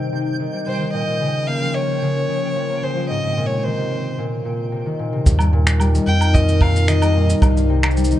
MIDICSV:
0, 0, Header, 1, 7, 480
1, 0, Start_track
1, 0, Tempo, 540541
1, 834, Time_signature, 4, 2, 24, 8
1, 7278, End_track
2, 0, Start_track
2, 0, Title_t, "Synth texture"
2, 0, Program_c, 0, 99
2, 0, Note_on_c, 0, 79, 76
2, 3712, Note_off_c, 0, 79, 0
2, 7278, End_track
3, 0, Start_track
3, 0, Title_t, "Violin"
3, 0, Program_c, 1, 40
3, 592, Note_on_c, 1, 72, 83
3, 816, Note_off_c, 1, 72, 0
3, 827, Note_on_c, 1, 75, 85
3, 1308, Note_on_c, 1, 77, 93
3, 1322, Note_off_c, 1, 75, 0
3, 1551, Note_on_c, 1, 73, 93
3, 1564, Note_off_c, 1, 77, 0
3, 2515, Note_on_c, 1, 72, 84
3, 2528, Note_off_c, 1, 73, 0
3, 2746, Note_off_c, 1, 72, 0
3, 2752, Note_on_c, 1, 75, 85
3, 3074, Note_on_c, 1, 73, 79
3, 3087, Note_off_c, 1, 75, 0
3, 3233, Note_on_c, 1, 72, 78
3, 3246, Note_off_c, 1, 73, 0
3, 3713, Note_off_c, 1, 72, 0
3, 5393, Note_on_c, 1, 79, 103
3, 5632, Note_on_c, 1, 75, 91
3, 5645, Note_off_c, 1, 79, 0
3, 5876, Note_on_c, 1, 77, 87
3, 5889, Note_off_c, 1, 75, 0
3, 6115, Note_on_c, 1, 75, 86
3, 6128, Note_off_c, 1, 77, 0
3, 6474, Note_off_c, 1, 75, 0
3, 7278, End_track
4, 0, Start_track
4, 0, Title_t, "Ambient pad"
4, 0, Program_c, 2, 92
4, 0, Note_on_c, 2, 55, 83
4, 0, Note_on_c, 2, 63, 75
4, 0, Note_on_c, 2, 72, 82
4, 799, Note_off_c, 2, 55, 0
4, 815, Note_off_c, 2, 63, 0
4, 815, Note_off_c, 2, 72, 0
4, 833, Note_on_c, 2, 53, 80
4, 834, Note_on_c, 2, 70, 81
4, 835, Note_on_c, 2, 61, 73
4, 2734, Note_off_c, 2, 53, 0
4, 2735, Note_off_c, 2, 61, 0
4, 2754, Note_on_c, 2, 60, 67
4, 2757, Note_on_c, 2, 48, 75
4, 2757, Note_on_c, 2, 56, 74
4, 3685, Note_off_c, 2, 70, 0
4, 3704, Note_off_c, 2, 60, 0
4, 3705, Note_off_c, 2, 48, 0
4, 3705, Note_off_c, 2, 56, 0
4, 4667, Note_on_c, 2, 55, 82
4, 4669, Note_on_c, 2, 63, 80
4, 4669, Note_on_c, 2, 70, 100
4, 6572, Note_off_c, 2, 70, 0
4, 6592, Note_on_c, 2, 72, 92
4, 7278, Note_off_c, 2, 55, 0
4, 7278, Note_off_c, 2, 63, 0
4, 7278, Note_off_c, 2, 72, 0
4, 7278, End_track
5, 0, Start_track
5, 0, Title_t, "Harp"
5, 0, Program_c, 3, 46
5, 0, Note_on_c, 3, 48, 68
5, 102, Note_off_c, 3, 48, 0
5, 112, Note_on_c, 3, 48, 62
5, 352, Note_on_c, 3, 51, 64
5, 398, Note_off_c, 3, 48, 0
5, 473, Note_on_c, 3, 55, 58
5, 594, Note_on_c, 3, 48, 63
5, 638, Note_off_c, 3, 51, 0
5, 715, Note_on_c, 3, 51, 63
5, 758, Note_off_c, 3, 48, 0
5, 758, Note_off_c, 3, 55, 0
5, 833, Note_on_c, 3, 46, 71
5, 878, Note_off_c, 3, 51, 0
5, 941, Note_off_c, 3, 46, 0
5, 951, Note_on_c, 3, 46, 63
5, 1072, Note_on_c, 3, 49, 86
5, 1118, Note_off_c, 3, 46, 0
5, 1314, Note_on_c, 3, 58, 68
5, 1435, Note_on_c, 3, 53, 59
5, 1781, Note_off_c, 3, 49, 0
5, 1792, Note_on_c, 3, 49, 65
5, 1838, Note_off_c, 3, 53, 0
5, 2021, Note_off_c, 3, 49, 0
5, 2032, Note_on_c, 3, 49, 66
5, 2272, Note_on_c, 3, 53, 68
5, 2388, Note_off_c, 3, 58, 0
5, 2392, Note_on_c, 3, 58, 60
5, 2501, Note_off_c, 3, 49, 0
5, 2512, Note_on_c, 3, 49, 67
5, 2558, Note_off_c, 3, 53, 0
5, 2631, Note_on_c, 3, 53, 67
5, 2752, Note_on_c, 3, 44, 66
5, 2798, Note_off_c, 3, 49, 0
5, 2798, Note_off_c, 3, 53, 0
5, 2862, Note_off_c, 3, 44, 0
5, 2873, Note_on_c, 3, 44, 63
5, 2993, Note_on_c, 3, 46, 85
5, 3038, Note_off_c, 3, 44, 0
5, 3235, Note_on_c, 3, 51, 70
5, 3278, Note_off_c, 3, 46, 0
5, 3353, Note_on_c, 3, 48, 59
5, 3398, Note_off_c, 3, 51, 0
5, 3714, Note_on_c, 3, 46, 67
5, 3758, Note_off_c, 3, 48, 0
5, 3941, Note_off_c, 3, 46, 0
5, 3952, Note_on_c, 3, 46, 64
5, 4191, Note_on_c, 3, 48, 64
5, 4238, Note_off_c, 3, 46, 0
5, 4314, Note_on_c, 3, 51, 62
5, 4358, Note_off_c, 3, 48, 0
5, 4433, Note_on_c, 3, 46, 68
5, 4478, Note_off_c, 3, 51, 0
5, 4553, Note_on_c, 3, 48, 65
5, 4598, Note_off_c, 3, 46, 0
5, 4671, Note_on_c, 3, 43, 72
5, 4718, Note_off_c, 3, 48, 0
5, 4780, Note_off_c, 3, 43, 0
5, 4791, Note_on_c, 3, 43, 70
5, 4909, Note_on_c, 3, 46, 95
5, 4958, Note_off_c, 3, 43, 0
5, 5150, Note_on_c, 3, 55, 81
5, 5247, Note_off_c, 3, 58, 0
5, 5271, Note_on_c, 3, 51, 71
5, 5318, Note_off_c, 3, 46, 0
5, 5318, Note_off_c, 3, 55, 0
5, 5630, Note_on_c, 3, 46, 75
5, 5678, Note_off_c, 3, 51, 0
5, 5863, Note_off_c, 3, 46, 0
5, 5873, Note_on_c, 3, 46, 80
5, 6112, Note_on_c, 3, 51, 77
5, 6158, Note_off_c, 3, 46, 0
5, 6235, Note_on_c, 3, 55, 64
5, 6354, Note_on_c, 3, 46, 73
5, 6398, Note_off_c, 3, 51, 0
5, 6473, Note_on_c, 3, 51, 73
5, 6518, Note_off_c, 3, 46, 0
5, 6518, Note_off_c, 3, 55, 0
5, 6593, Note_on_c, 3, 43, 71
5, 6638, Note_off_c, 3, 51, 0
5, 6706, Note_off_c, 3, 43, 0
5, 6717, Note_on_c, 3, 43, 75
5, 6834, Note_on_c, 3, 48, 98
5, 6878, Note_off_c, 3, 43, 0
5, 7075, Note_on_c, 3, 55, 88
5, 7197, Note_on_c, 3, 51, 70
5, 7238, Note_off_c, 3, 48, 0
5, 7238, Note_off_c, 3, 55, 0
5, 7278, Note_off_c, 3, 51, 0
5, 7278, End_track
6, 0, Start_track
6, 0, Title_t, "Sub bass"
6, 0, Program_c, 4, 38
6, 4674, Note_on_c, 4, 39, 96
6, 5321, Note_off_c, 4, 39, 0
6, 5391, Note_on_c, 4, 41, 89
6, 6520, Note_off_c, 4, 41, 0
6, 6589, Note_on_c, 4, 36, 86
6, 7238, Note_off_c, 4, 36, 0
6, 7278, End_track
7, 0, Start_track
7, 0, Title_t, "Drums"
7, 4674, Note_on_c, 9, 36, 107
7, 4676, Note_on_c, 9, 82, 70
7, 4763, Note_off_c, 9, 36, 0
7, 4765, Note_off_c, 9, 82, 0
7, 4784, Note_on_c, 9, 77, 75
7, 4800, Note_on_c, 9, 82, 51
7, 4873, Note_off_c, 9, 77, 0
7, 4889, Note_off_c, 9, 82, 0
7, 5033, Note_on_c, 9, 26, 82
7, 5041, Note_on_c, 9, 82, 76
7, 5122, Note_off_c, 9, 26, 0
7, 5130, Note_off_c, 9, 82, 0
7, 5148, Note_on_c, 9, 77, 81
7, 5158, Note_on_c, 9, 82, 69
7, 5237, Note_off_c, 9, 77, 0
7, 5247, Note_off_c, 9, 82, 0
7, 5283, Note_on_c, 9, 82, 50
7, 5372, Note_off_c, 9, 82, 0
7, 5514, Note_on_c, 9, 77, 74
7, 5521, Note_on_c, 9, 82, 74
7, 5603, Note_off_c, 9, 77, 0
7, 5609, Note_off_c, 9, 82, 0
7, 5636, Note_on_c, 9, 36, 118
7, 5641, Note_on_c, 9, 82, 72
7, 5725, Note_off_c, 9, 36, 0
7, 5730, Note_off_c, 9, 82, 0
7, 5759, Note_on_c, 9, 82, 50
7, 5848, Note_off_c, 9, 82, 0
7, 5868, Note_on_c, 9, 36, 102
7, 5872, Note_on_c, 9, 77, 67
7, 5956, Note_off_c, 9, 36, 0
7, 5961, Note_off_c, 9, 77, 0
7, 6004, Note_on_c, 9, 82, 78
7, 6093, Note_off_c, 9, 82, 0
7, 6111, Note_on_c, 9, 26, 72
7, 6115, Note_on_c, 9, 82, 70
7, 6200, Note_off_c, 9, 26, 0
7, 6204, Note_off_c, 9, 82, 0
7, 6233, Note_on_c, 9, 77, 73
7, 6237, Note_on_c, 9, 82, 54
7, 6322, Note_off_c, 9, 77, 0
7, 6326, Note_off_c, 9, 82, 0
7, 6479, Note_on_c, 9, 82, 75
7, 6568, Note_off_c, 9, 82, 0
7, 6589, Note_on_c, 9, 36, 127
7, 6590, Note_on_c, 9, 77, 77
7, 6597, Note_on_c, 9, 82, 74
7, 6678, Note_off_c, 9, 36, 0
7, 6679, Note_off_c, 9, 77, 0
7, 6686, Note_off_c, 9, 82, 0
7, 6724, Note_on_c, 9, 82, 48
7, 6813, Note_off_c, 9, 82, 0
7, 6955, Note_on_c, 9, 26, 75
7, 6958, Note_on_c, 9, 77, 72
7, 6962, Note_on_c, 9, 82, 35
7, 7023, Note_off_c, 9, 82, 0
7, 7023, Note_on_c, 9, 82, 42
7, 7044, Note_off_c, 9, 26, 0
7, 7047, Note_off_c, 9, 77, 0
7, 7076, Note_off_c, 9, 82, 0
7, 7076, Note_on_c, 9, 82, 69
7, 7084, Note_off_c, 9, 82, 0
7, 7084, Note_on_c, 9, 82, 50
7, 7143, Note_off_c, 9, 82, 0
7, 7143, Note_on_c, 9, 82, 63
7, 7201, Note_off_c, 9, 82, 0
7, 7201, Note_on_c, 9, 82, 52
7, 7278, Note_off_c, 9, 82, 0
7, 7278, End_track
0, 0, End_of_file